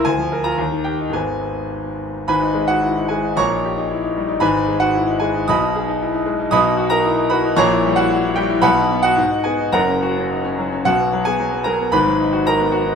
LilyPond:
\new Staff \with { instrumentName = "Grand piano" } { \time 2/4 \key gis \minor \tempo 4 = 112 << { gis''8. ais''8. g''8 | gis''4 r4 | <b' gis'' b''>8. <fis' fis''>8. <gis' gis''>8 | <cis'' ais'' cis'''>2 |
<b' gis'' b''>8. <fis' fis''>8. <gis' gis''>8 | <dis'' b'' dis'''>2 | \key b \major <dis'' b'' dis'''>8. <ais' ais''>8. <b' b''>8 | <cis'' ais'' cis'''>8. <fis' fis''>8. <g' g''>8 |
<b' fis'' b''>8. <fis' dis'' fis''>8. <gis' gis''>8 | <ais' fis'' ais''>4 r4 | <fis' fis''>8. <gis' gis''>8. <ais' ais''>8 | <b' b''>4 <ais' ais''>4 | } \\ { d,16 eis16 ais'16 eis'16 dis,16 dis16 g'16 dis'16 | <gis,, gis, dis b gis'>2 | <gis,, gis,>16 dis'16 gis16 dis'16 e'16 dis'16 gis16 dis'16 | <ais,, ais,>16 dis'16 g'16 dis'16 e'16 dis'16 g16 dis'16 |
<gis,, gis,>16 dis'16 gis16 dis'16 e'16 dis'16 gis16 dis'16 | <b,, b,>16 dis'16 gis'16 dis'16 e'16 dis'16 gis16 dis'16 | <b,, b,>16 dis'16 fis'16 dis'16 e'16 dis'16 fis'16 dis'16 | <ais,, ais,>16 e'16 g16 e'16 fis'16 e'16 g16 e'16 |
<b,, b,>16 dis'16 b16 dis'16 gis,16 dis'16 b16 dis'16 | <fis,, fis,>16 cis'16 fis'16 cis'16 dis'16 cis'16 fis16 cis'16 | <b,, b,>16 b16 fis16 b16 fis16 b16 fis16 b16 | <gis,, gis,>16 fis16 dis'16 fis'16 dis'16 b16 fis'16 dis'16 | } >> }